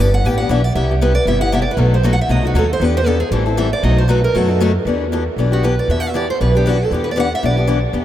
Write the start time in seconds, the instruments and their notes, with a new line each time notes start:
Already playing: upright bass G1
0.00 steel-string acoustic guitar D5
0.14 steel-string acoustic guitar F#5
0.24 upright bass A1, steel-string acoustic guitar E3 B3 D4 G4 G5
0.38 steel-string acoustic guitar B3 D4 G4 F#5
0.49 upright bass B1, steel-string acoustic guitar E3 B3 D4 G4 E5
0.64 steel-string acoustic guitar D5
0.75 upright bass C2, steel-string acoustic guitar C3 G3 B3 E4 G4 E5
0.91 steel-string acoustic guitar G4
1.01 steel-string acoustic guitar C3 G3 B3 E4 G4 B4
1.15 steel-string acoustic guitar D5
1.26 upright bass G1, steel-string acoustic guitar C3 G3 B3 E4 G4 E5
1.41 steel-string acoustic guitar B3 E4 G4 F#5
1.52 steel-string acoustic guitar C3 G3 B3 E4 G4 E5
1.62 steel-string acoustic guitar D5
1.71 steel-string acoustic guitar B4
1.77 upright bass B1, steel-string acoustic guitar B2 F#3 A3 D#4 F#4 A4
1.94 steel-string acoustic guitar C5
2.03 steel-string acoustic guitar B2 F#3 A3 D#4 F#4 D#5
2.13 steel-string acoustic guitar F#5
2.21 steel-string acoustic guitar E5
2.29 upright bass C2, steel-string acoustic guitar B2 F#3 A3 D#4 F#4 D#5
2.43 steel-string acoustic guitar A3 D#4 F#4
2.54 upright bass D#2, steel-string acoustic guitar B2 F#3 A3 D#4 F#4
2.58 steel-string acoustic guitar A4
2.73 steel-string acoustic guitar C5
2.80 upright bass E2, steel-string acoustic guitar E3 B3 D4 G4
2.84 steel-string acoustic guitar B4
2.97 steel-string acoustic guitar C5
3.06 steel-string acoustic guitar E3 B3 D4 G4 A4
3.20 steel-string acoustic guitar G#4
3.31 upright bass A1, steel-string acoustic guitar E3 G3 C4 E4 G4 A4
3.46 steel-string acoustic guitar C4 E4 A4
3.57 steel-string acoustic guitar E3 G3 C4 E4 A4 E5
3.73 steel-string acoustic guitar D5
3.83 upright bass B1, steel-string acoustic guitar B2 F#3 A3 D#4 F#4 D#5
3.98 steel-string acoustic guitar C5
4.08 steel-string acoustic guitar B2 F#3 A3 D#4 F#4 B4
4.24 steel-string acoustic guitar A#4
4.34 upright bass F#2, steel-string acoustic guitar B2 F#3 A3 D#4 F#4 A4
4.48 steel-string acoustic guitar A3 D#4 F#4
4.60 steel-string acoustic guitar B2 F#3 A3 D#4 F#4
4.85 upright bass E2, steel-string acoustic guitar E3 B3 D4 G4
5.12 steel-string acoustic guitar E3 B3 D4 G4
5.36 upright bass B1, steel-string acoustic guitar E3 B3 D4 G4
5.52 steel-string acoustic guitar B3 D4 F#4 G4
5.63 steel-string acoustic guitar E3 B3 D4 G4 B4
5.79 steel-string acoustic guitar D5
5.88 upright bass E2, steel-string acoustic guitar E3 B3 D4 G4 E5
6.00 steel-string acoustic guitar F#5
6.09 steel-string acoustic guitar E5
6.14 steel-string acoustic guitar E3 B3 D4 G4 D5
6.30 steel-string acoustic guitar C5
6.41 upright bass B1, steel-string acoustic guitar E3 B3 D4 G4 B4
6.55 steel-string acoustic guitar B3 D4 G4
6.66 steel-string acoustic guitar E3 B3 D4 F#4 G4
6.84 steel-string acoustic guitar A4
6.91 upright bass E2, steel-string acoustic guitar E3 B3 D4 G4
7.04 steel-string acoustic guitar B4
7.11 steel-string acoustic guitar D5
7.16 steel-string acoustic guitar E3 B3 D4 G4 F#5
7.35 steel-string acoustic guitar E5
7.43 upright bass B1, steel-string acoustic guitar E3 B3 D4 G4 D5
7.57 steel-string acoustic guitar B3 D4 G4
7.67 steel-string acoustic guitar E3 B3 D4 G4
7.93 upright bass E2, steel-string acoustic guitar E3 B3 D4 G4